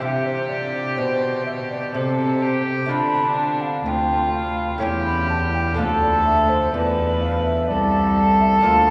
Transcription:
Already playing: lute C4
0.00 cello C3, lute C3 E4 G4, violin G4, flute E5
0.26 flute C5
0.49 flute D5
0.97 cello B2, lute B2, flute C5
1.46 flute E5
1.70 flute D5
1.94 lute C3, cello C3, violin A4, flute C5
2.42 violin G4
2.86 lute A3 D4 F4
2.90 lute D3, cello D3, violin D4, flute B5
3.38 flute A5
3.61 flute F5
3.85 cello D2, lute D2, violin F4, flute G5
4.34 flute F5
4.78 lute A3 C#4 E4, flute G5
4.82 lute E2, cello E2, violin G4
5.06 flute B5
5.30 flute A5
5.54 flute G5
5.74 lute A3 D4 F4, flute F5
5.79 cello D2, lute D2, violin A4
6.01 flute D5
6.25 flute E5
6.49 flute C5
6.72 lute E2, cello E2, violin B4, flute D5
7.21 flute F5
7.44 flute E5
7.68 cello C2, violin A4, flute D5
8.40 flute E5
8.61 lute A#3 D4 F4
8.65 lute D2, cello D2, flute F5

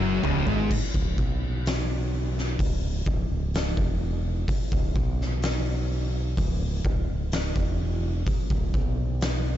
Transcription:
0.00 fingered electric bass F#1, distorted electric guitar F#2 F#3
0.23 fingered electric bass C#1, distorted electric guitar C#2 C#3, floor tom
0.46 fingered electric bass G#1, distorted electric guitar G#2 G#3, floor tom
0.71 kick, crash
0.94 fingered electric bass C#1, kick
1.18 fingered electric bass B1, kick
1.66 snare, open hi-hat
2.38 snare
2.59 fingered electric bass C#1, kick, open hi-hat
3.06 fingered electric bass C#1, kick
3.29 fingered electric bass C#1
3.54 snare, open hi-hat
3.77 fingered electric bass E1, kick
4.48 kick, open hi-hat
4.72 fingered electric bass C#1, kick
4.96 fingered electric bass B1, kick
5.21 snare
5.42 snare, open hi-hat
6.37 fingered electric bass C#1, kick, open hi-hat
6.85 fingered electric bass C#1, kick
7.10 fingered electric bass C#1
7.32 snare, open hi-hat
7.56 fingered electric bass E1, kick
8.26 kick, open hi-hat
8.50 fingered electric bass C#1, kick
8.74 fingered electric bass B1, kick
9.21 snare, open hi-hat

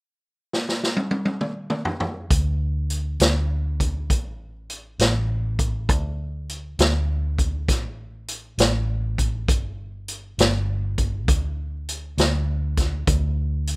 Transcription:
0.53 snare
0.69 snare
0.84 snare
0.97 high tom
1.11 high tom
1.25 high tom
1.41 mid tom
1.70 mid tom
1.85 floor tom
2.00 floor tom
2.31 fingered electric bass D2, kick, closed hi-hat
2.90 closed hi-hat
3.20 fingered electric bass D2, snare, closed hi-hat
3.80 kick, closed hi-hat
4.10 fingered electric bass A1, kick, closed hi-hat
4.70 closed hi-hat
4.99 fingered electric bass A1, snare, closed hi-hat
5.59 kick, closed hi-hat
5.89 fingered electric bass D2, kick, closed hi-hat
6.49 closed hi-hat
6.79 fingered electric bass D2, snare, closed hi-hat
7.38 kick, closed hi-hat
7.68 fingered electric bass A1, kick, snare, closed hi-hat
8.28 closed hi-hat
8.58 fingered electric bass A1, snare, closed hi-hat
9.18 kick, closed hi-hat
9.48 fingered electric bass G1, kick, closed hi-hat
10.08 closed hi-hat
10.38 fingered electric bass G1, snare, closed hi-hat
10.98 kick, closed hi-hat
11.28 fingered electric bass D2, kick, closed hi-hat
11.89 closed hi-hat
12.18 fingered electric bass D2, snare, closed hi-hat
12.77 kick, snare, closed hi-hat
13.07 fingered electric bass D2, kick, closed hi-hat
13.67 closed hi-hat

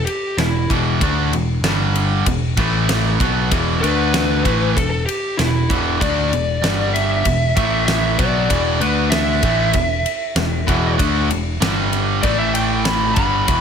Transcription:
0.06 lead electric guitar G4, ride
0.37 picked electric bass E1, overdriven electric guitar E2 B2, lead electric guitar E4, snare, ride
0.69 picked electric bass E1, overdriven electric guitar E2 B2 E3, kick, ride
1.00 picked electric bass D2, overdriven electric guitar D3 A3 D4, kick, ride
1.31 picked electric bass E1, overdriven electric guitar E2 B2, ride
1.61 picked electric bass G1, overdriven electric guitar G2 D3 G3, snare, ride
1.96 ride
2.26 picked electric bass E1, overdriven electric guitar E2 B2, kick, ride
2.57 picked electric bass A1, overdriven electric guitar A2 E3 A3, kick, ride
2.89 snare, ride
3.20 picked electric bass B1, overdriven electric guitar B2 F#3 B3, kick, ride
3.51 picked electric bass E1, overdriven electric guitar E2 B2 E3, kick, ride
3.81 picked electric bass D2, overdriven electric guitar D3 A3 D4, lead electric guitar B4, ride
4.14 snare, ride
4.44 picked electric bass A1, overdriven electric guitar A2 E3 A3, kick, ride
4.76 picked electric bass E1, overdriven electric guitar E2 B2, lead electric guitar A4, kick, ride
4.90 lead electric guitar A4
5.06 lead electric guitar G4, ride
5.37 picked electric bass E1, overdriven electric guitar E2 B2, lead electric guitar E4, snare, ride
5.70 picked electric bass E1, overdriven electric guitar E2 B2 E3, kick, ride
6.01 picked electric bass D2, overdriven electric guitar D3 A3 D4, lead electric guitar D5, kick, ride
6.33 picked electric bass E1, overdriven electric guitar E2 B2, ride
6.63 picked electric bass G1, overdriven electric guitar G2 D3 G3, snare, ride
6.94 lead electric guitar E5, ride
7.25 picked electric bass E1, overdriven electric guitar E2 B2, kick, ride
7.56 picked electric bass A1, overdriven electric guitar A2 E3 A3, lead electric guitar E5, kick, ride
7.86 lead electric guitar E5, snare, ride
8.19 picked electric bass B1, overdriven electric guitar B2 F#3 B3, lead electric guitar D5, kick, ride
8.49 picked electric bass E1, overdriven electric guitar E2 B2 E3, kick, ride
8.79 picked electric bass D2, overdriven electric guitar D3 A3 D4, lead electric guitar B4, ride
9.10 lead electric guitar E5, snare, ride
9.42 picked electric bass A1, overdriven electric guitar A2 E3 A3, kick, ride
9.73 picked electric bass E1, overdriven electric guitar E2 B2, kick, ride
10.06 ride
10.35 picked electric bass E1, overdriven electric guitar E2 B2, snare, ride
10.67 picked electric bass E1, overdriven electric guitar E2 B2 E3, kick, ride
10.99 picked electric bass D2, overdriven electric guitar D3 A3 D4, kick, ride
11.29 picked electric bass E1, overdriven electric guitar E2 B2, ride
11.61 picked electric bass G1, overdriven electric guitar G2 D3 G3, snare, ride
11.93 ride
12.23 picked electric bass A1, overdriven electric guitar A2 E3 A3, lead electric guitar D5, kick, ride
12.38 lead electric guitar E5
12.54 lead electric guitar G5, ride
12.85 lead electric guitar B5, snare, ride
13.16 picked electric bass G1, overdriven electric guitar G2 D3 G3, lead electric guitar B5, kick, ride
13.48 picked electric bass E1, overdriven electric guitar E2 B2 E3, kick, ride

